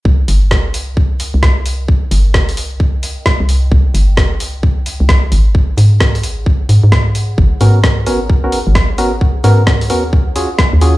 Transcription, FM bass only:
X:1
M:4/4
L:1/16
Q:"Swing 16ths" 1/4=131
K:Ablyd
V:1 name="FM bass" clef=bass
C,, z G,,,4 C,,4- C,, C,,4- C,,- | C,, z G,,,4 C,,4- C,, z2 C,,3 | C,, z G,,,4 C,,4- C,, C,,3 A,,,2- | A,,, z A,,4 A,,,4 A,, A,,4- A,, |
A,,, z A,,4 A,,,4- A,,, A,,,4- A,,,- | A,,, z A,,4 E,,4- E,, z2 E,,3 |]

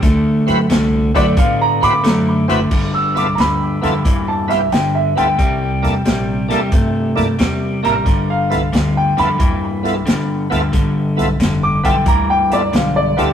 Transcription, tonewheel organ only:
X:1
M:4/4
L:1/16
Q:"Swing" 1/4=90
K:Gmix
V:1 name="Tonewheel organ"
z2 [CE^FB] z3 [CEFB] z3 [CEFB] z3 [CEFB] z | z2 [B,EFA] z3 [B,EFA] z3 [B,EFG] z3 [B,EFA] z | z2 [_B,DEA] z3 [B,DEA] z3 [B,DEA] z3 [B,DE_B] z | z2 [B,EFA] z3 [B,EFA] z3 [B,EFA] z3 [B,EFA] z |
z2 [B,EFA] z3 [B,EFA] z3 [B,EFA] z3 [B,EFA] z |]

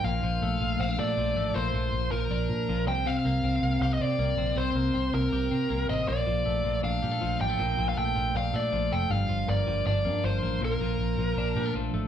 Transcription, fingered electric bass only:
X:1
M:4/4
L:1/8
Q:1/4=159
K:Bb
V:1 name="Fingered electric bass" clef=bass
B,,, B,,, B,,, B,,, B,,, B,, B,,, A,,, | B,,, B,,, B,,, B,,, B,,, B,, B,,, C,,- | C,, C,, C,, C,, C,, C, C,, B,,, | C,, C,, C,, C,, C,, C, C,, A,,, |
B,,, B,,, B,,, B,,, B,,, B,, B,,, A,,, | B,,, B,,, B,,, B,,, B,,, B,, B,,, F,,, | G,,, G,,, G,,, G,,, G,,, G,, G,,, A,,, | B,,, B,,, B,,, B,,, B,,, B,, B,,, A,,, |]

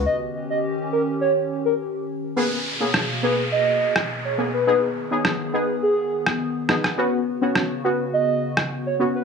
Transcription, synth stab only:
X:1
M:4/4
L:1/16
Q:1/4=104
K:G#m
V:1 name="Synth stab"
z16 | [A,B,G] z2 [A,B,G] z2 [A,B,G] z6 z [A,B,G] z | [B,DG] z2 [B,DG] z2 [B,DG] z6 z [B,DG] z | [B,CF] z2 [B,CF] z2 [B,CF] z6 z [B,CF] z |]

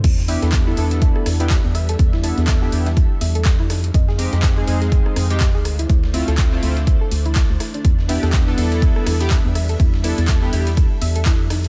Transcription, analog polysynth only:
X:1
M:4/4
L:1/16
Q:"Swing 16ths" 1/4=123
K:Ephr
V:1 name="Analog polysynth"
z2 [B,DEG]3 [B,DEA] [B,DEA]4- [B,DEA] [B,DEG] z4 | z2 [B,DEA]3 [B,DEG] [B,DEG] z8 z | z2 [_A,C_EG]3 [A,CE_A] [A,CEA]4- [A,CEA] [A,CEG] z4 | z2 [A,CEF]3 [A,CEF] [A,CEF] z8 z |
z2 [B,DEG]3 [B,DEA] [B,DEA]4- [B,DEA] [B,DEG] z4 | z2 [B,DEA]3 [B,DEG] [B,DEG] z8 z |]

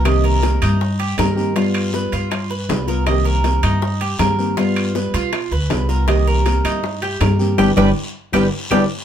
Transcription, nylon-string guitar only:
X:1
M:4/4
L:1/8
Q:1/4=159
K:Cm
V:1 name="Nylon-string guitar"
[C,E,B,CG]2 [E,B,CG]2 z2 [E,B,CG] [E,B,CG] | [G,=B,F]2 [G,B,F]2 z2 [G,B,F] [B,F] | [C,E,B,CG]2 [E,B,CG]2 z2 [E,B,CG] [E,B,CG] | [G,=B,F]2 [G,B,F]2 z2 [G,B,F] [B,F] |
[C,E,B,CG]2 [E,B,CG]2 z2 [E,B,CG] [E,B,CG] | [G,=B,D] [G,B,D] z2 [G,B,D] z [G,B,D] z |]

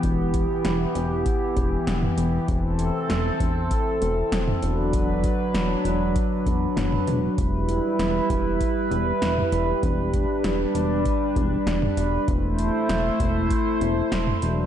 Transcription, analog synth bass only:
X:1
M:4/4
L:1/16
Q:1/4=98
K:Em
V:1 name="Analog synth bass" clef=bass
E,,,4 E,,,2 E,,,3 z E,,,2 E,,,2 E,,,2 | E,,,4 E,,,2 E,,,3 z E,,,2 E,,,2 E,,,2- | E,,,4 E,,,2 E,,,3 z E,,,2 E,,,2 E,,,2 | E,,,4 E,,,2 E,,,3 z E,,,2 E,,,2 E,,,2 |
E,,,4 E,,,2 E,,,3 z E,,,2 E,,,2 E,,,2 | E,,,4 E,,,2 E,,,3 z E,,,2 E,,,2 E,,,2 |]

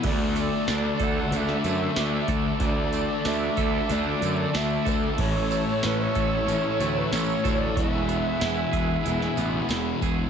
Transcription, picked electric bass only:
X:1
M:4/4
L:1/8
Q:1/4=93
K:Dlyd
V:1 name="Picked electric bass" clef=bass
D,,2 D,, D,, D,, F,, D,, D,, | D,,2 D,, D,, D,, F,, D,, D,, | A,,,2 A,,, A,,, A,,, D,, A,,, D,, | E,,,2 E,,, E,,, E,,, A,,, E,,, E,,, |]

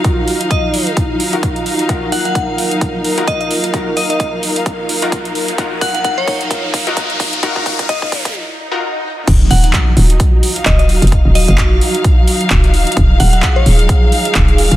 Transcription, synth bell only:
X:1
M:4/4
L:1/16
Q:"Swing 16ths" 1/4=130
K:Ebm
V:1 name="Synth bell"
z4 e3 z8 z | z2 g g z8 e e z2 | z2 e e z12 | z2 g g g d2 z8 z |
z4 e3 z8 z | z2 g g z8 e e z2 | z2 e e z12 | z2 g g g d2 z8 z |]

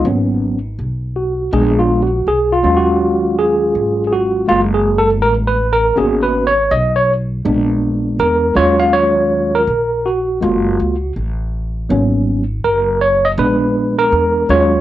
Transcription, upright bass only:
X:1
M:4/4
L:1/8
Q:"Swing 16ths" 1/4=81
K:Ebm
V:1 name="Upright bass" clef=bass
A,,,2 C,,2 B,,,2 C,, E,,- | E,,2 A,,,2 G,,,2 =A,,,2 | A,,,2 C,,2 B,,,2 _F,, E,,- | E,,2 B,,,2 G,,, D,, =A,,,2 |
A,,,2 G,,,2 B,,,2 _F,, E,, |]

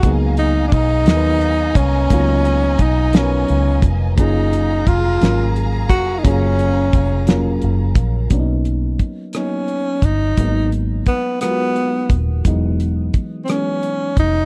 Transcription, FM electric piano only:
X:1
M:6/8
L:1/8
Q:3/8=58
K:F#
V:1 name="FM electric piano"
[F,A,B,DG]3 [F,B,DAB]3 | [F,A,B,DE]3 [F,B,DAB]3 | [F,A,CEG]3 [F,A,CEA]3 | [F,A,CEG]3 [F,A,CEA]3 |
[F,A,B,C=D^D]3 [F,A,B,CD]3 | [F,G,A,B,D]3 [F,G,B,EFA]3 | [=E,F,G,B,D]3 [E,F,G,B,C]3 |]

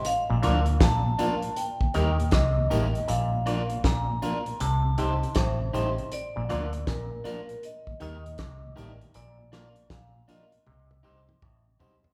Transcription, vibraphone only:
X:1
M:4/4
L:1/8
Q:"Swing 16ths" 1/4=79
K:Bb
V:1 name="Vibraphone"
f2 a2 g2 e2 | f2 b2 a2 c2 | d2 B B e e2 d | d2 f e4 z |]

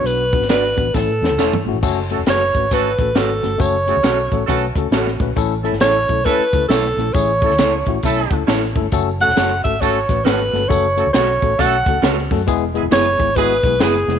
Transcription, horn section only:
X:1
M:4/4
L:1/16
Q:"Swing" 1/4=135
K:F#m
V:1 name="Horn section"
z16 | z2 [A,CFA] z4 z [A,CFA]2 z6 | z2 [A,CFA] z4 z [A,CFA]2 z6 | z2 [A,CEA] z4 z [A,CEA]2 z6 |
z2 [A,CEA] z4 z [A,CEA]3 z4 z | z2 [A,CFA] z4 z [A,CFA]2 z6 | z2 [A,CFA] z4 z [A,CFA]2 z6 | z2 [G,B,EG] z4 z [G,B,EG]2 z6 |]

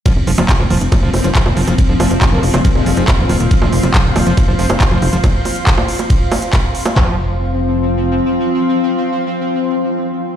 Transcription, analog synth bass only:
X:1
M:4/4
L:1/16
Q:1/4=139
K:Cphr
V:1 name="Analog synth bass" clef=bass
z F,,, F,,, F,,, z F,,, E,,, F,,, z F,,, F,,, F,,, z F,,, F,,, F,,, | z F,,, F,,, F,,, z F,,, F,,, F,,, z F,,, F,,, F,,, z E,,, E,,, E,,, | z F,,, F,,, F,,, z F,,, E,,, F,,, z F,,, F,,, F,,, z F,,, F,,, F,,, | z16 |
F,,,12 z4 | z16 |]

